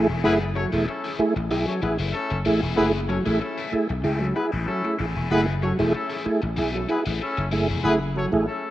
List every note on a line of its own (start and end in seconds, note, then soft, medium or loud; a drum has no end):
0.09 0.24 E1 medium
0.09 0.22 E3 soft
0.09 0.22 A3 medium
0.09 0.22 E4 medium
0.09 0.21 G#4 medium
0.23 0.65 F#1 loud
0.23 0.42 E3 medium
0.23 0.39 A3 medium
0.23 0.42 A3 medium
0.23 0.34 B3 loud
0.23 0.34 E4 loud
0.23 0.39 E4 medium
0.23 0.42 E4 medium
0.23 0.34 G#4 loud
0.23 0.39 G#4 medium
0.23 0.42 G#4 medium
0.23 0.34 B4 loud
0.56 0.71 F#3 medium
0.56 0.66 C#4 medium
0.56 0.66 A4 medium
0.56 0.66 C#5 medium
0.56 muted overdriven electric guitar stroke soft
0.72 0.85 E1 medium
0.72 0.85 E3 medium
0.72 0.86 A3 medium
0.72 0.85 A3 medium
0.72 0.86 E4 medium
0.72 0.85 E4 medium
0.72 0.85 G#4 medium
0.72 0.86 G#4 medium
0.87 1.12 A3 medium
0.87 1.12 C#4 medium
0.87 1.12 E4 medium
0.87 1.12 A4 loud
0.87 muted overdriven electric guitar stroke soft
1.04 1.18 E3 medium
1.04 1.18 A3 medium
1.04 1.19 E4 medium
1.04 1.19 G#4 medium
1.19 1.34 A3 medium
1.19 1.34 E4 medium
1.19 1.34 G#4 loud
1.19 muted overdriven electric guitar stroke soft
1.19 muted slap bass stroke soft
1.36 1.51 A1 medium
1.36 muted overdriven electric guitar stroke soft
1.51 1.65 B1 medium
1.51 1.71 E3 medium
1.51 1.72 A3 medium
1.51 1.66 E4 medium
1.51 1.72 E4 medium
1.51 1.66 G#4 medium
1.51 1.72 G#4 medium
1.67 1.81 F#3 medium
1.67 1.79 C#4 medium
1.67 1.79 A4 medium
1.67 1.79 C#5 medium
1.82 1.97 A1 medium
1.82 1.93 B3 medium
1.82 1.97 E4 medium
1.82 1.93 E4 medium
1.82 1.93 G#4 medium
1.82 1.98 G#4 medium
1.82 1.93 B4 medium
1.82 muted overdriven electric guitar stroke soft
1.99 2.12 F#1 medium
1.99 2.12 E3 medium
1.99 2.12 A3 medium
1.99 2.12 E4 medium
1.99 2.11 G#4 medium
2.13 2.39 A3 loud
2.13 2.39 C#4 loud
2.13 2.39 E4 loud
2.13 2.39 A4 loud
2.13 muted overdriven electric guitar stroke soft
2.30 2.43 F#1 medium
2.30 muted overdriven electric guitar stroke medium
2.45 2.60 A1 medium
2.45 2.59 E3 medium
2.45 2.61 A3 medium
2.45 2.60 A3 medium
2.45 2.61 E4 medium
2.45 2.60 E4 medium
2.45 2.61 G#4 loud
2.45 2.60 G#4 medium
2.62 2.75 E1 medium
2.62 2.75 E3 soft
2.62 2.75 A3 medium
2.62 2.75 E4 medium
2.62 2.75 G#4 medium
2.76 3.18 F#1 loud
2.76 2.98 E3 medium
2.76 2.92 A3 medium
2.76 2.98 A3 medium
2.76 2.87 B3 loud
2.76 2.87 E4 loud
2.76 2.92 E4 medium
2.76 2.98 E4 medium
2.76 2.87 G#4 loud
2.76 2.93 G#4 loud
2.76 2.99 G#4 loud
2.76 2.87 B4 loud
3.08 3.24 F#3 medium
3.08 3.19 C#4 medium
3.08 3.19 A4 medium
3.08 3.19 C#5 medium
3.08 muted overdriven electric guitar stroke soft
3.26 3.39 A1 medium
3.26 3.39 E3 medium
3.26 3.39 A3 medium
3.26 3.39 E4 medium
3.26 3.38 E4 medium
3.26 3.38 G#4 medium
3.26 3.39 G#4 medium
3.40 3.66 A3 medium
3.40 3.66 C#4 medium
3.40 3.65 E4 loud
3.40 3.66 A4 medium
3.40 muted overdriven electric guitar stroke soft
3.58 3.71 E3 medium
3.58 3.72 A3 medium
3.58 3.72 E4 medium
3.58 3.73 G#4 medium
3.72 3.87 A3 medium
3.72 3.87 E4 medium
3.72 3.88 G#4 medium
3.72 muted overdriven electric guitar stroke soft
3.72 muted slap bass stroke soft
3.89 4.02 B1 medium
3.89 muted overdriven electric guitar stroke medium
4.04 4.31 C#2 medium
4.04 4.25 E3 medium
4.04 4.25 A3 medium
4.04 4.19 E4 medium
4.04 4.25 E4 medium
4.04 4.19 G#4 medium
4.04 4.26 G#4 medium
4.21 4.34 F#3 medium
4.21 4.33 A3 medium
4.21 4.33 C#4 medium
4.21 4.33 E4 medium
4.21 4.33 A4 medium
4.35 4.46 B3 medium
4.35 4.46 E4 medium
4.35 4.51 E4 medium
4.35 4.46 G#4 medium
4.35 4.51 G#4 medium
4.35 4.46 B4 medium
4.35 muted overdriven electric guitar stroke soft
4.52 4.65 A1 medium
4.52 4.65 E3 soft
4.52 4.65 A3 soft
4.52 4.65 E4 medium
4.52 4.65 G#4 medium
4.67 4.83 F#3 medium
4.67 4.93 A3 loud
4.67 4.92 C#4 loud
4.67 4.93 E4 loud
4.67 4.93 A4 loud
4.67 muted overdriven electric guitar stroke soft
4.84 4.98 A3 medium
4.84 4.98 E4 medium
4.84 4.98 G#4 medium
4.84 muted overdriven electric guitar stroke soft
4.99 5.14 A1 medium
4.99 5.13 E3 medium
4.99 5.13 A3 medium
4.99 5.06 E4 soft
4.99 5.14 E4 medium
4.99 5.06 G#4 soft
4.99 5.14 G#4 medium
5.15 5.29 E1 medium
5.15 5.29 E3 medium
5.15 5.29 A3 medium
5.15 5.28 E4 medium
5.15 5.28 G#4 medium
5.30 5.72 F#1 loud
5.30 5.51 E3 medium
5.30 5.52 A3 medium
5.30 5.46 A3 medium
5.30 5.41 B3 loud
5.30 5.41 E4 loud
5.30 5.46 E4 medium
5.30 5.52 E4 medium
5.30 5.41 G#4 loud
5.30 5.46 G#4 loud
5.30 5.52 G#4 medium
5.30 5.41 B4 loud
5.62 5.78 F#3 medium
5.62 5.73 C#4 medium
5.62 5.73 A4 medium
5.62 5.73 C#5 medium
5.62 muted overdriven electric guitar stroke soft
5.79 5.92 E1 medium
5.79 5.92 E3 medium
5.79 5.93 A3 medium
5.79 5.92 A3 medium
5.79 5.93 E4 medium
5.79 5.92 E4 medium
5.79 5.92 G#4 medium
5.79 5.93 G#4 medium
5.93 6.20 A3 medium
5.93 6.20 C#4 medium
5.93 6.20 E4 loud
5.93 6.20 A4 loud
5.93 muted overdriven electric guitar stroke soft
6.10 6.24 E3 medium
6.10 6.24 A3 medium
6.10 6.25 E4 medium
6.10 6.25 G#4 medium
6.25 6.41 A3 medium
6.25 6.41 E4 medium
6.25 6.41 G#4 medium
6.25 muted overdriven electric guitar stroke soft
6.25 muted slap bass stroke medium
6.42 6.55 A1 medium
6.42 muted overdriven electric guitar stroke soft
6.56 6.84 B1 medium
6.56 6.75 E3 medium
6.56 6.75 A3 medium
6.56 6.73 E4 medium
6.56 6.75 E4 medium
6.56 6.73 G#4 medium
6.56 6.76 G#4 medium
6.74 6.88 F#3 medium
6.74 6.87 A3 medium
6.74 6.87 C#4 medium
6.74 6.87 E4 medium
6.74 6.87 A4 medium
6.89 7.00 B3 medium
6.89 7.04 E4 medium
6.89 7.00 E4 medium
6.89 7.04 G#4 medium
6.89 7.00 G#4 medium
6.89 7.00 B4 medium
6.89 muted overdriven electric guitar stroke soft
7.06 7.19 A1 medium
7.06 7.19 E3 soft
7.06 7.19 A3 medium
7.06 7.18 E4 medium
7.06 7.18 G#4 medium
7.21 7.47 A3 medium
7.21 7.47 C#4 loud
7.21 7.47 E4 loud
7.21 7.47 A4 loud
7.21 muted overdriven electric guitar stroke soft
7.37 7.50 F#1 medium
7.37 muted overdriven electric guitar stroke soft
7.51 7.67 F#1 loud
7.51 7.66 E3 medium
7.51 7.66 A3 medium
7.51 7.67 A3 medium
7.51 7.68 E4 medium
7.51 7.67 E4 medium
7.51 7.68 G#4 medium
7.51 7.67 G#4 medium
7.69 7.82 E1 medium
7.69 7.82 E3 medium
7.69 7.82 A3 medium
7.69 7.82 E4 medium
7.69 7.81 G#4 medium
7.83 8.25 F#1 loud
7.83 7.99 A3 medium
7.83 7.94 B3 loud
7.83 7.99 E4 medium
7.83 7.94 E4 medium
7.83 7.94 G#4 loud
7.83 7.99 G#4 loud
7.83 7.94 B4 loud
8.16 8.31 F#3 medium
8.16 8.26 C#4 medium
8.16 8.27 A4 medium
8.16 8.27 C#5 medium
8.32 8.45 A1 medium
8.32 8.46 A3 medium
8.32 8.46 E4 medium
8.32 8.46 G#4 medium
8.47 8.71 A3 medium
8.47 8.71 C#4 medium
8.47 8.71 E4 medium
8.47 8.71 A4 medium